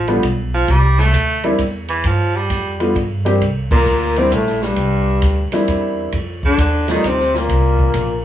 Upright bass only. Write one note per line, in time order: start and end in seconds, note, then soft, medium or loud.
0.00 0.22 A1 medium
0.23 0.67 B1 medium
0.68 1.13 C2 medium
1.13 1.58 D2 medium
1.59 2.03 E2 medium
2.04 2.49 G2 medium
2.50 2.94 F2 medium
2.95 3.40 G2 medium
3.41 3.85 C2 medium
3.85 4.30 D2 medium
4.31 4.76 A#1 medium
4.77 5.21 C2 medium
5.22 5.50 D2 medium
5.67 6.12 E2 medium
6.13 6.57 F2 medium
6.58 7.03 D#2 loud
7.03 7.48 D2 medium
7.48 7.93 C2 medium
7.94 8.23 A#1 medium